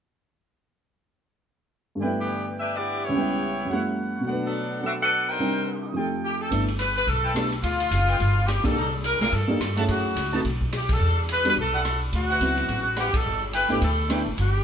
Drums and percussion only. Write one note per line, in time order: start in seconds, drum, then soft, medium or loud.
6.51 kick soft
6.51 ride medium
6.68 ride soft
6.79 hi-hat pedal soft
6.79 ride medium
7.07 kick soft
7.07 ride soft
7.36 cross-stick medium
7.36 hi-hat pedal medium
7.36 ride medium
7.52 ride soft
7.63 kick soft
7.63 ride medium
7.80 ride soft
7.91 hi-hat pedal soft
7.91 ride medium
8.08 ride soft
8.20 kick soft
8.20 ride medium
8.48 cross-stick medium
8.48 hi-hat pedal soft
8.48 ride medium
8.65 kick medium
8.65 ride medium
9.04 hi-hat pedal medium
9.04 ride medium
9.21 snare soft
9.21 ride soft
9.32 kick soft
9.32 ride soft
9.61 cross-stick medium
9.61 hi-hat pedal soft
9.61 ride medium
9.77 ride soft
9.88 kick soft
9.88 ride medium
10.16 hi-hat pedal medium
10.16 ride medium
10.45 kick soft
10.45 ride medium
10.61 kick soft
10.72 cross-stick medium
10.72 hi-hat pedal soft
10.72 ride medium
10.89 kick medium
10.89 ride medium
11.29 hi-hat pedal medium
11.29 ride medium
11.45 ride medium
11.57 kick soft
11.85 cross-stick medium
11.85 hi-hat pedal soft
11.85 ride medium
12.13 kick soft
12.13 ride medium
12.41 hi-hat pedal soft
12.41 ride medium
12.57 ride soft
12.68 kick soft
12.68 ride soft
12.96 cross-stick medium
12.96 hi-hat pedal medium
12.96 ride medium
13.14 kick medium
13.14 ride medium
13.53 hi-hat pedal soft
13.53 ride medium
13.70 ride soft
13.82 kick soft
13.82 ride medium
14.10 cross-stick medium
14.10 hi-hat pedal medium
14.10 ride medium
14.38 kick soft
14.38 ride medium